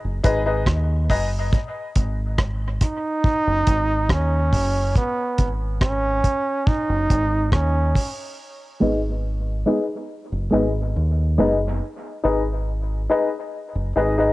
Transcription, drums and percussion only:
0.24 kick medium
0.24 closed hi-hat medium
0.66 kick loud
0.66 cross-stick loud
1.10 kick medium
1.10 open hi-hat medium
1.53 kick loud
1.53 hi-hat pedal medium
1.96 kick medium
1.96 closed hi-hat medium
2.38 kick loud
2.38 cross-stick loud
2.81 kick medium
2.81 cross-stick medium
2.81 closed hi-hat medium
3.24 kick loud
3.67 kick medium
3.67 closed hi-hat medium
4.09 kick loud
4.09 cross-stick loud
4.53 kick medium
4.53 open hi-hat medium
4.95 kick medium
4.95 hi-hat pedal medium
5.38 kick medium
5.38 closed hi-hat medium
5.81 kick loud
5.81 cross-stick loud
6.24 kick medium
6.24 closed hi-hat medium
6.67 kick loud
7.10 kick medium
7.10 closed hi-hat medium
7.52 kick loud
7.52 cross-stick medium
7.95 kick medium
7.95 open hi-hat medium

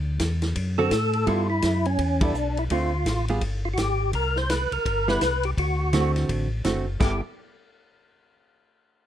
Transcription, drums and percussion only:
0.19 kick soft
0.19 snare medium
0.19 hi-hat pedal medium
0.19 ride medium
0.42 snare soft
0.42 ride soft
0.56 kick soft
0.56 ride medium
0.91 kick soft
0.91 snare medium
0.91 hi-hat pedal medium
0.91 ride medium
1.13 ride soft
1.27 kick soft
1.27 ride medium
1.62 kick soft
1.62 snare medium
1.62 hi-hat pedal medium
1.62 ride medium
1.85 ride soft
1.99 kick soft
1.99 ride medium
2.21 kick medium
2.21 ride medium
2.34 hi-hat pedal medium
2.57 ride soft
2.70 kick soft
2.70 ride medium
3.06 kick soft
3.06 snare medium
3.06 hi-hat pedal medium
3.06 ride medium
3.28 ride soft
3.41 kick soft
3.41 ride medium
3.77 kick soft
3.77 snare medium
3.77 hi-hat pedal medium
3.77 ride medium
4.13 kick soft
4.13 ride medium
4.36 snare soft
4.50 snare medium
4.50 hi-hat pedal medium
4.50 ride medium
4.72 ride soft
4.86 kick soft
4.86 ride medium
5.08 snare medium
5.21 snare medium
5.21 hi-hat pedal medium
5.21 ride medium
5.43 ride soft
5.58 kick soft
5.58 ride medium
5.93 snare medium
5.93 hi-hat pedal medium
5.93 ride medium
6.16 snare soft
6.16 ride soft
6.29 kick soft
6.29 ride medium
6.64 snare medium
6.64 hi-hat pedal medium
6.64 ride medium
7.01 kick medium
7.01 snare medium
7.01 crash medium

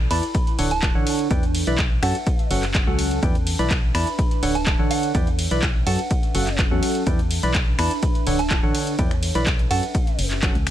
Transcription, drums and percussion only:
0.11 open hi-hat loud
0.11 ride medium
0.23 closed hi-hat medium
0.35 kick loud
0.35 closed hi-hat medium
0.35 ride medium
0.47 closed hi-hat soft
0.59 open hi-hat loud
0.59 ride medium
0.71 closed hi-hat medium
0.82 kick loud
0.82 clap loud
0.82 closed hi-hat medium
0.82 ride medium
1.07 open hi-hat loud
1.07 ride medium
1.19 closed hi-hat medium
1.31 kick loud
1.31 closed hi-hat medium
1.31 ride medium
1.43 closed hi-hat soft
1.55 open hi-hat loud
1.55 ride medium
1.67 closed hi-hat medium
1.78 kick loud
1.78 clap loud
1.78 closed hi-hat medium
1.78 ride medium
2.03 finger snap medium
2.03 open hi-hat loud
2.03 ride medium
2.15 closed hi-hat medium
2.27 kick loud
2.27 closed hi-hat medium
2.27 ride medium
2.39 closed hi-hat soft
2.51 open hi-hat loud
2.51 ride medium
2.63 clap soft
2.63 closed hi-hat medium
2.74 kick loud
2.74 clap loud
2.74 closed hi-hat medium
2.74 ride medium
2.99 open hi-hat loud
2.99 ride medium
3.11 closed hi-hat medium
3.23 kick loud
3.23 closed hi-hat medium
3.23 ride medium
3.35 closed hi-hat soft
3.47 open hi-hat loud
3.47 ride medium
3.59 closed hi-hat medium
3.70 kick loud
3.70 clap loud
3.70 closed hi-hat medium
3.70 ride medium
3.95 finger snap medium
3.95 open hi-hat loud
3.95 ride medium
4.07 closed hi-hat medium
4.19 kick loud
4.19 closed hi-hat medium
4.19 ride medium
4.31 closed hi-hat soft
4.43 open hi-hat loud
4.43 ride medium
4.55 closed hi-hat medium
4.66 kick loud
4.66 clap loud
4.66 closed hi-hat medium
4.66 ride medium
4.91 open hi-hat loud
4.91 ride medium
5.03 closed hi-hat medium
5.15 kick loud
5.15 closed hi-hat medium
5.15 ride medium
5.27 closed hi-hat soft
5.39 open hi-hat loud
5.39 ride medium
5.51 closed hi-hat medium
5.62 kick loud
5.62 clap loud
5.62 closed hi-hat medium
5.62 ride medium
5.87 open hi-hat loud
5.87 ride medium
5.99 closed hi-hat medium
6.11 kick loud
6.11 closed hi-hat medium
6.11 ride medium
6.23 closed hi-hat soft
6.35 open hi-hat loud
6.35 ride medium
6.47 clap soft
6.47 closed hi-hat medium
6.58 kick loud
6.58 clap loud
6.58 closed hi-hat medium
6.58 ride medium
6.83 open hi-hat loud
6.83 ride medium
6.95 closed hi-hat medium
7.07 kick loud
7.07 closed hi-hat medium
7.07 ride medium
7.19 closed hi-hat soft
7.31 open hi-hat loud
7.31 ride medium
7.43 closed hi-hat medium
7.54 kick loud
7.54 clap loud
7.54 closed hi-hat medium
7.54 ride medium
7.79 finger snap medium
7.79 open hi-hat loud
7.79 ride medium
7.91 closed hi-hat medium
8.03 kick loud
8.03 closed hi-hat medium
8.03 ride medium
8.15 closed hi-hat soft
8.27 open hi-hat loud
8.27 ride medium
8.39 closed hi-hat medium
8.50 kick loud
8.50 clap loud
8.50 closed hi-hat medium
8.50 ride medium
8.75 open hi-hat loud
8.75 ride medium
8.87 closed hi-hat medium
8.99 kick loud
8.99 closed hi-hat medium
8.99 ride medium
9.11 finger snap medium
9.11 closed hi-hat soft
9.23 open hi-hat loud
9.23 ride medium
9.35 closed hi-hat medium
9.46 kick loud
9.46 clap loud
9.46 closed hi-hat medium
9.46 ride medium
9.59 closed hi-hat soft
9.71 open hi-hat loud
9.71 ride medium
9.83 closed hi-hat medium
9.95 kick loud
9.95 closed hi-hat medium
9.95 ride medium
10.07 closed hi-hat soft
10.19 open hi-hat loud
10.19 ride medium
10.31 clap soft
10.31 closed hi-hat medium
10.42 kick loud
10.42 clap loud
10.42 closed hi-hat medium
10.42 ride medium
10.55 closed hi-hat soft
10.67 finger snap medium
10.67 open hi-hat loud
10.67 ride medium

